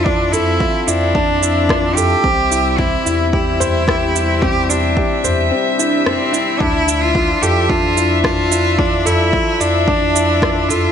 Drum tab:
SH |-x-x-x-x|-x-x-x-x|-x-x-x-x|-x-x-x-x|
SD |------r-|------r-|------r-|------r-|
T2 |-o--o--o|--o--o--|o--o--o-|o--o--o-|
BD |o-o-o-o-|o-o-o-o-|o-o-----|o-o-o-o-|

SH |-x-x-x-x|
SD |------r-|
T2 |-o--o--o|
BD |o-o-o-o-|